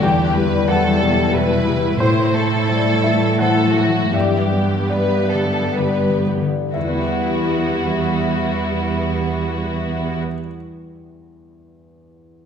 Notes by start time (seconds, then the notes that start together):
Already playing: D3 A3 A4 B4
0.02 E2 G3 E4 G4 G5
0.24 B4
0.34 G3 B4
0.46 G3
0.68 F#3 E4 A4 B4 F#5
0.90 G3
1.02 B2
1.11 E4
1.33 B2 E4 B4
1.55 C3
1.67 G3
1.78 B2
1.99 A2 A3 C5
2.23 C5
2.33 A3 A4
2.47 A3
2.68 G3 E4 C5
2.93 A3
3.04 E3 E5
3.15 E4
3.39 E3 E4 A4 C5 F#5
3.64 F#3
3.75 A3 F#4
3.88 E3
4.13 G2 B3 G4 E5
4.38 B4
4.52 B3
4.65 B3
4.90 A3 G4 B4 D5
5.19 B3
5.32 D3 A4
5.48 G3
5.76 D3 G4 B4
6.09 E3
6.26 B3
6.41 D3
6.73 E2 G3 B3 E4 F#4 E5
6.80 E3
6.88 B3
6.95 G3 E4
7.01 B4
7.08 F#5